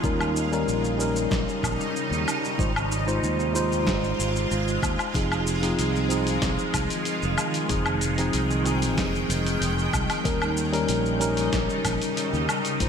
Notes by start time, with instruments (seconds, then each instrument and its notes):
0.03 fretless electric bass D#2, ambient pad C#3 G3 D#4, tine electric piano G3 C#4 D#4 A#4, kick, shaker
0.21 low woodblock, shaker
0.36 shaker
0.52 tine electric piano G3 C#4 D#4 A#4, shaker
0.68 fretless electric bass A#1, shaker
0.84 shaker
0.98 tine electric piano G3 C#4 D#4 A#4, shaker
1.16 shaker
1.31 fretless electric bass A#1, kick, snare, shaker
1.49 shaker
1.63 fretless electric bass A#1, kick, low woodblock, shaker
1.81 shaker
1.96 shaker
2.11 fretless electric bass D#2, shaker
2.28 low woodblock, shaker
2.44 shaker
2.58 fretless electric bass G#1, ambient pad C3 G#3 F4, tine electric piano G#3 D#4 F4 C5, kick, shaker
2.76 low woodblock, shaker
2.92 shaker
3.06 tine electric piano G#3 D#4 F4 C5, shaker
3.23 fretless electric bass D#2, shaker
3.40 shaker
3.53 tine electric piano G#3 D#4 F4 C5, shaker
3.72 shaker
3.87 fretless electric bass G#1, kick, snare, shaker
4.04 shaker
4.19 fretless electric bass G#1, shaker
4.36 shaker
4.51 fretless electric bass G#1, shaker
4.68 shaker
4.82 fretless electric bass D#2, kick, low woodblock, shaker
4.99 low woodblock, shaker
5.14 fretless electric bass F1, ambient pad D#3 F4, tine electric piano F3 C4 D#4 G#4, kick, open hi-hat, shaker
5.32 low woodblock, shaker
5.47 shaker
5.62 tine electric piano F3 C4 D#4 G#4, open hi-hat, shaker
5.79 fretless electric bass C2, open hi-hat, shaker
5.96 shaker
6.08 tine electric piano F3 C4 D#4 G#4, open hi-hat, shaker
6.27 open hi-hat, shaker
6.42 fretless electric bass C2, kick, snare, open hi-hat, shaker
6.59 shaker
6.74 fretless electric bass C2, kick, open hi-hat, low woodblock, shaker
6.90 open hi-hat, shaker
7.05 open hi-hat, shaker
7.22 fretless electric bass F1, shaker
7.38 low woodblock, shaker
7.54 open hi-hat, shaker
7.68 fretless electric bass F1, tine electric piano F3 C4 D#4 G#4, ambient pad G5, kick, open hi-hat, shaker
7.86 low woodblock, shaker
8.01 open hi-hat, shaker
8.18 tine electric piano F3 C4 D#4 G#4, open hi-hat, shaker
8.33 fretless electric bass C2, open hi-hat, shaker
8.50 shaker
8.64 tine electric piano F3 C4 D#4 G#4, open hi-hat, shaker
8.82 open hi-hat, shaker
8.97 fretless electric bass F1, kick, snare, open hi-hat, shaker
9.15 shaker
9.29 fretless electric bass F1, open hi-hat, shaker
9.46 open hi-hat, shaker
9.61 fretless electric bass F1, open hi-hat, shaker
9.79 shaker
9.93 fretless electric bass C2, kick, low woodblock, shaker
10.10 open hi-hat, low woodblock, shaker
10.24 fretless electric bass D#2, ambient pad C#3 G3 D#4, tine electric piano G3 C#4 D#4 A#4, kick, open hi-hat, shaker
10.42 low woodblock, shaker
10.57 shaker
10.72 tine electric piano G3 C#4 D#4 A#4, open hi-hat, shaker
10.89 fretless electric bass A#1, open hi-hat, shaker
11.06 shaker
11.19 tine electric piano G3 C#4 D#4 A#4, open hi-hat, shaker
11.37 open hi-hat, shaker
11.53 fretless electric bass A#1, kick, snare, open hi-hat, shaker
11.70 shaker
11.85 fretless electric bass A#1, kick, open hi-hat, low woodblock, shaker
12.02 open hi-hat, shaker
12.17 open hi-hat, shaker
12.33 fretless electric bass D#2, shaker
12.49 low woodblock, shaker
12.65 open hi-hat, shaker
12.80 fretless electric bass G#1, tine electric piano G#3 D#4 F4 C5, kick, open hi-hat, shaker